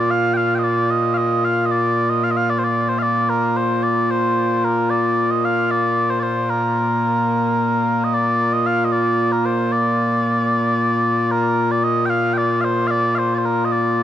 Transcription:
0.00 14.03 A#2 medium
0.00 14.03 A#3 medium
0.00 14.03 F4 medium
0.00 0.11 D5 medium
0.11 0.34 F5 loud
0.34 0.55 F5 loud
0.34 0.37 G5 loud
0.55 0.64 D#5 medium
0.55 0.59 G5 medium
0.64 0.90 D5 loud
0.90 1.14 D#5 loud
1.14 1.45 D#5 medium
1.14 1.17 F5 medium
1.45 1.66 F5 medium
1.66 1.71 D#5 medium
1.71 2.09 D5 loud
2.09 2.24 D#5 medium
2.24 2.31 F5 loud
2.31 2.37 D#5 medium
2.37 2.50 F5 loud
2.50 2.59 D5 loud
2.59 2.64 C5 medium
2.64 2.89 D5 medium
2.89 2.99 C5 medium
2.99 3.29 D5 loud
2.99 3.02 F5 loud
3.29 3.57 A#4 medium
3.57 3.83 C5 medium
3.83 4.11 D5 loud
4.11 4.64 C5 medium
4.64 4.90 A#4 medium
4.90 5.30 D5 loud
5.30 5.45 D#5 medium
5.45 5.71 F5 loud
5.71 6.10 D5 loud
6.10 6.20 C5 medium
6.20 6.50 C5 medium
6.20 6.23 D5 medium
6.50 8.04 A#4 medium
8.04 8.14 D#5 medium
8.14 8.53 D5 loud
8.53 8.66 D#5 medium
8.66 8.85 F5 loud
8.85 8.92 D#5 medium
8.92 9.32 D5 loud
9.32 9.46 A#4 medium
9.46 9.72 C5 medium
9.72 11.31 D5 loud
11.31 11.71 A#4 loud
11.71 11.84 D5 loud
11.84 12.06 D#5 loud
12.06 12.10 G5 loud
12.10 12.34 F5 loud
12.34 12.38 G5 loud
12.38 12.61 D5 loud
12.61 12.87 C5 loud
12.61 12.64 F5 loud
12.87 13.15 D5 loud
12.87 12.91 F5 loud
13.15 13.35 C5 medium
13.15 13.18 F5 medium
13.35 13.45 C5 medium
13.35 13.38 D5 medium
13.45 13.65 A#4 loud
13.65 13.72 D#5 medium
13.72 14.03 D5 loud

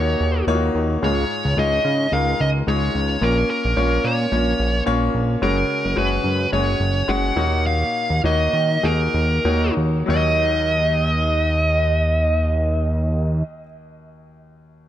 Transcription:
0.00 0.16 D#2 loud
0.00 1.05 A#2 medium
0.00 0.48 A#3 medium
0.00 0.48 D#4 medium
0.00 0.54 F#4 medium
0.00 1.05 G#4 medium
0.00 0.45 C#5 medium
0.00 0.48 C#5 medium
0.20 0.43 D#2 medium
0.47 0.70 D#2 loud
0.47 0.88 A#3 medium
0.47 0.89 D#4 medium
0.47 0.55 F4 medium
0.47 0.89 C#5 loud
0.54 0.92 F#4 medium
0.75 0.98 D#2 loud
1.02 1.25 C#2 loud
1.02 1.81 G#2 medium
1.02 1.43 G#3 medium
1.02 1.43 D#4 medium
1.02 1.43 F4 medium
1.02 1.43 C#5 medium
1.02 1.59 C#5 loud
1.45 1.55 C#2 loud
1.57 1.80 C#2 loud
1.57 1.98 G#3 medium
1.57 1.98 D#4 medium
1.57 1.98 F4 medium
1.57 1.99 C#5 medium
1.57 2.15 D#5 medium
1.85 2.07 C#3 loud
2.12 2.35 C#2 loud
2.12 2.53 G#3 medium
2.12 2.53 D#4 medium
2.12 2.53 F4 medium
2.12 2.53 A#4 medium
2.12 2.38 F5 loud
2.40 2.63 C#2 loud
2.40 2.48 D#5 loud
2.67 2.90 C#2 loud
2.67 3.08 G#3 medium
2.67 3.08 D#4 medium
2.67 3.08 F4 medium
2.67 3.08 C#5 medium
2.67 3.24 C#5 medium
2.95 3.17 C#2 medium
3.21 3.44 A#1 loud
3.21 3.62 A#3 medium
3.21 3.63 C#4 medium
3.21 3.63 F4 medium
3.21 3.49 A#4 loud
3.21 3.63 C#5 medium
3.50 4.06 A#4 medium
3.65 3.75 A#1 medium
3.77 3.99 A#1 loud
3.77 4.17 A#3 medium
3.77 4.17 C#4 medium
3.77 4.18 F4 medium
3.77 4.18 C#5 medium
4.04 4.27 A#2 loud
4.04 4.83 C#5 medium
4.32 4.54 A#1 loud
4.32 4.72 A#3 medium
4.32 4.72 C#4 medium
4.32 4.73 F4 medium
4.32 4.73 C#5 medium
4.59 4.82 A#1 medium
4.86 5.10 A#1 loud
4.86 5.27 A#3 medium
4.86 5.27 C#4 medium
4.86 5.27 F4 medium
4.86 5.27 C#5 loud
5.14 5.37 A#1 loud
5.42 5.64 F#1 loud
5.42 6.20 C#3 medium
5.42 5.82 G#3 medium
5.42 5.82 C#4 medium
5.42 5.82 F#4 medium
5.42 5.98 A#4 loud
5.42 5.82 C#5 medium
5.85 5.95 F#1 medium
5.96 6.19 F#1 loud
5.96 6.37 G#3 medium
5.96 6.37 C#4 medium
5.96 6.37 F#4 medium
5.96 6.49 B4 medium
5.96 6.38 C#5 medium
6.24 6.47 F#2 loud
6.52 6.75 F#1 loud
6.52 6.94 G#3 medium
6.52 6.94 C#4 medium
6.52 6.94 F#4 medium
6.52 6.94 C#5 medium
6.52 7.10 C#5 loud
6.80 7.03 F#1 medium
7.08 7.32 F#1 loud
7.08 7.37 G#3 medium
7.08 7.37 C#4 medium
7.08 7.35 F#4 medium
7.08 7.35 C#5 medium
7.08 7.66 F#5 loud
7.36 7.84 D#2 loud
7.36 8.20 A#2 medium
7.36 8.07 A#3 medium
7.36 8.07 D#4 medium
7.36 8.08 F#4 medium
7.36 8.08 C#5 medium
7.66 8.20 F5 loud
8.10 8.21 D#2 medium
8.24 8.48 D#2 loud
8.24 8.68 A#3 medium
8.24 8.68 D#4 medium
8.24 8.68 F#4 medium
8.24 8.68 C#5 medium
8.24 8.86 D#5 loud
8.53 8.78 D#3 loud
8.83 9.09 D#2 loud
8.83 9.29 A#3 medium
8.83 9.29 D#4 medium
8.83 9.29 F#4 medium
8.83 9.29 G#4 medium
8.83 9.73 A#4 medium
9.14 9.40 D#2 medium
9.45 9.71 D#2 loud
9.45 9.92 A#3 medium
9.45 9.92 D#4 medium
9.45 9.92 F#4 medium
9.45 9.92 C#5 medium
9.77 10.03 D#2 medium
10.06 13.62 D#2 medium
10.06 13.43 D#2 loud
10.06 13.61 F#3 medium
10.06 13.62 D#4 medium
10.06 13.44 D#5 medium
10.10 13.65 C#5 medium

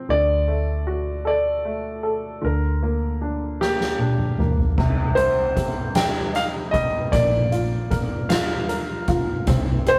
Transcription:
0.00 0.11 F3 soft
0.00 0.11 C4 soft
0.09 2.40 D2 medium
0.09 2.39 D3 medium
0.09 1.26 D5 medium
0.48 1.63 A3 soft
0.87 2.39 F#4 soft
1.25 2.02 A4 soft
1.25 2.48 D5 medium
1.65 2.41 A3 soft
2.03 2.42 A4 soft
2.41 4.74 D2 medium
2.41 4.73 D3 medium
2.41 3.18 A#4 medium
2.83 3.59 A#3 soft
3.22 3.99 D4 soft
3.61 4.38 A#3 soft
3.61 4.45 G4 medium
3.61 snare soft
3.81 snare soft
3.99 4.76 D4 soft
3.99 high tom medium
4.19 mid tom medium
4.38 4.77 A#3 soft
4.38 mid tom medium
4.58 floor tom medium
4.77 7.09 C2 medium
4.77 7.09 C3 soft
4.77 kick medium
4.77 crash medium
5.15 5.94 G3 soft
5.15 5.90 C5 medium
5.15 closed hi-hat soft
5.56 7.09 G4 soft
5.56 kick medium
5.56 closed hi-hat soft
5.95 6.71 G3 soft
5.95 6.04 G5 medium
5.95 snare medium
5.95 closed hi-hat medium
6.33 7.10 D#4 soft
6.33 6.44 F5 medium
6.33 snare soft
6.33 closed hi-hat soft
6.71 7.11 G3 soft
6.71 7.13 D#5 medium
6.71 kick medium
6.71 closed hi-hat soft
7.12 9.44 A#1 medium
7.12 9.44 A#3 soft
7.12 8.26 D5 medium
7.12 kick medium
7.12 closed hi-hat medium
7.52 8.28 F4 soft
7.52 closed hi-hat soft
7.90 8.67 A#4 soft
7.90 kick medium
7.90 closed hi-hat soft
8.29 9.07 F4 soft
8.29 9.14 F5 medium
8.29 snare medium
8.29 closed hi-hat medium
8.69 9.45 A#4 soft
8.69 closed hi-hat soft
9.08 9.47 F4 soft
9.08 kick medium
9.08 closed hi-hat soft
9.47 9.99 C2 medium
9.47 9.99 C4 medium
9.47 kick loud
9.47 closed hi-hat medium
9.86 9.99 G4 soft
9.86 9.99 C5 medium
9.86 closed hi-hat soft

